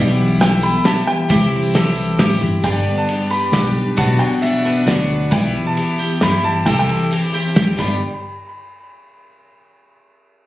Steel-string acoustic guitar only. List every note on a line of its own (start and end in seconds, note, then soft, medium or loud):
2.65 3.98 G2 medium
2.88 4.21 B3 medium
3.10 3.54 D4 medium
3.31 3.76 B4 medium
3.55 4.20 D4 medium
3.77 4.65 B4 medium
3.98 5.30 B2 medium
4.21 5.30 D4 soft
4.44 4.87 F#4 medium
4.66 5.10 B4 medium
4.88 5.30 F#4 medium
5.13 5.31 B4 medium